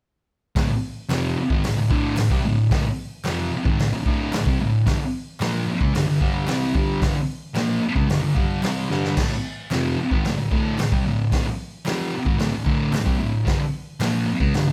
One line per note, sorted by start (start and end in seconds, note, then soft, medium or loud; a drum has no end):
0.56 0.68 D2 medium
0.56 0.69 A2 loud
0.56 kick loud
0.56 snare loud
0.56 open hi-hat medium
0.70 muted distorted electric guitar stroke medium
1.09 1.36 F2 medium
1.09 1.36 C3 loud
1.09 1.36 F3 loud
1.09 snare loud
1.09 clap medium
1.09 open hi-hat medium
1.37 muted distorted electric guitar stroke medium
1.50 1.63 G#2 medium
1.50 1.63 D#3 loud
1.50 kick loud
1.64 1.76 D2 medium
1.64 1.76 A2 medium
1.64 snare loud
1.64 open hi-hat medium
1.77 1.88 D2 medium
1.77 1.89 A2 medium
1.89 2.15 D2 loud
1.89 2.16 A2 loud
1.89 2.17 D3 loud
1.89 kick loud
2.16 2.30 D2 medium
2.16 2.31 A2 medium
2.16 snare loud
2.16 clap loud
2.16 open hi-hat medium
2.30 2.43 C3 medium
2.30 2.44 G3 medium
2.30 kick loud
2.45 2.66 D2 medium
2.45 2.66 A2 medium
2.71 2.84 D2 medium
2.71 2.84 A2 loud
2.71 kick loud
2.71 snare loud
2.71 open hi-hat medium
2.86 muted distorted electric guitar stroke medium
3.25 3.51 F2 medium
3.25 3.51 C3 loud
3.25 3.52 F3 loud
3.25 snare loud
3.25 clap loud
3.25 open hi-hat medium
3.52 muted distorted electric guitar stroke medium
3.65 3.78 G#2 medium
3.65 3.78 D#3 loud
3.65 kick loud
3.79 3.91 D2 medium
3.79 3.91 A2 medium
3.79 snare loud
3.79 open hi-hat medium
3.92 4.04 D2 medium
3.92 4.05 A2 medium
4.05 4.31 D2 loud
4.05 4.32 A2 loud
4.05 4.32 D3 loud
4.05 kick loud
4.32 4.46 D2 medium
4.32 4.46 A2 medium
4.32 snare loud
4.32 clap loud
4.32 open hi-hat medium
4.46 4.59 C3 medium
4.46 4.59 G3 medium
4.46 kick loud
4.61 4.81 D2 medium
4.61 4.82 A2 medium
4.86 4.99 G2 loud
4.86 4.99 D3 loud
4.86 kick loud
4.86 snare loud
4.86 open hi-hat medium
5.00 muted distorted electric guitar stroke medium
5.40 5.66 A#2 medium
5.40 5.67 F3 loud
5.40 5.67 A#3 loud
5.40 snare loud
5.40 clap loud
5.40 open hi-hat medium
5.68 muted distorted electric guitar stroke medium
5.80 5.93 C#3 medium
5.80 5.94 G#3 loud
5.80 kick loud
5.93 6.06 G2 medium
5.93 6.06 D3 medium
5.93 snare loud
5.93 open hi-hat medium
6.07 6.19 G2 medium
6.07 6.20 D3 medium
6.21 6.47 G2 loud
6.21 6.47 D3 loud
6.21 6.47 G3 loud
6.21 kick loud
6.47 6.74 C3 medium
6.47 6.74 G3 medium
6.47 6.74 C4 loud
6.47 snare loud
6.47 clap medium
6.47 open hi-hat medium
6.75 7.01 G2 loud
6.75 7.01 D3 loud
6.75 7.02 G3 loud
6.75 kick loud
7.02 7.14 G2 medium
7.02 7.15 D3 loud
7.02 kick loud
7.02 snare loud
7.02 open hi-hat medium
7.15 muted distorted electric guitar stroke medium
7.54 7.81 A#2 medium
7.54 7.81 F3 medium
7.54 7.82 A#3 loud
7.54 snare loud
7.54 clap medium
7.54 open hi-hat medium
7.81 muted distorted electric guitar stroke medium
7.95 8.08 C#3 medium
7.95 8.09 G#3 loud
7.95 kick loud
8.08 8.20 G2 medium
8.08 8.20 D3 medium
8.08 snare loud
8.08 open hi-hat medium
8.21 8.33 G2 medium
8.21 8.34 D3 medium
8.35 8.62 G2 medium
8.35 8.62 D3 loud
8.35 8.62 G3 loud
8.35 kick loud
8.63 8.89 C3 medium
8.63 8.89 G3 medium
8.63 8.90 C4 loud
8.63 snare loud
8.63 clap loud
8.63 open hi-hat medium
8.90 9.16 G2 medium
8.90 9.17 D3 loud
8.90 9.17 G3 loud
8.90 snare medium
9.05 snare medium
9.17 9.30 D2 medium
9.17 9.30 A2 loud
9.17 kick loud
9.17 snare loud
9.17 open hi-hat medium
9.17 crash loud
9.31 muted distorted electric guitar stroke medium
9.71 9.97 F2 medium
9.71 9.98 C3 medium
9.71 9.98 F3 loud
9.71 snare loud
9.71 clap loud
9.71 open hi-hat medium
9.98 muted distorted electric guitar stroke medium
10.11 10.24 G#2 medium
10.11 10.25 D#3 loud
10.11 kick loud
10.25 10.37 D2 medium
10.25 10.37 A2 medium
10.25 snare loud
10.25 open hi-hat medium
10.38 10.50 D2 medium
10.38 10.51 A2 medium
10.51 10.77 D2 medium
10.51 10.77 A2 medium
10.51 10.78 D3 loud
10.51 kick loud
10.78 10.91 D2 medium
10.78 10.92 A2 medium
10.78 snare loud
10.78 clap medium
10.78 open hi-hat medium
10.91 11.04 C3 medium
10.91 11.05 G3 loud
10.91 kick loud
11.06 11.27 D2 medium
11.06 11.27 A2 medium
11.32 11.45 D2 medium
11.32 11.45 A2 loud
11.32 kick loud
11.32 snare loud
11.32 open hi-hat medium
11.46 muted distorted electric guitar stroke medium
11.85 12.12 F2 medium
11.85 12.12 C3 medium
11.85 12.13 F3 loud
11.85 snare loud
11.85 clap loud
11.85 open hi-hat medium
12.13 muted distorted electric guitar stroke medium
12.25 12.38 G#2 medium
12.25 12.38 D#3 loud
12.25 kick loud
12.38 12.51 D2 medium
12.38 12.51 A2 medium
12.38 snare loud
12.38 open hi-hat medium
12.52 12.63 D2 medium
12.52 12.64 A2 medium
12.65 12.91 D2 loud
12.65 12.91 A2 loud
12.65 12.93 D3 loud
12.65 kick loud
12.92 13.04 D2 medium
12.92 13.05 A2 medium
12.92 snare loud
12.92 clap loud
12.92 open hi-hat medium
13.04 13.18 C3 medium
13.04 13.19 G3 loud
13.04 kick loud
13.19 13.41 D2 medium
13.19 13.41 A2 medium
13.45 13.59 G2 loud
13.45 13.59 D3 loud
13.45 kick loud
13.45 snare loud
13.45 open hi-hat medium
13.60 muted distorted electric guitar stroke medium
14.00 14.26 A#2 medium
14.00 14.27 F3 loud
14.00 14.27 A#3 loud
14.00 snare loud
14.00 clap loud
14.00 open hi-hat medium
14.27 muted distorted electric guitar stroke medium
14.40 14.53 C#3 loud
14.40 14.54 G#3 loud
14.40 kick loud
14.54 14.66 G2 medium
14.54 14.67 D3 medium
14.54 snare loud
14.54 open hi-hat medium
14.67 14.72 G2 medium
14.67 14.72 D3 medium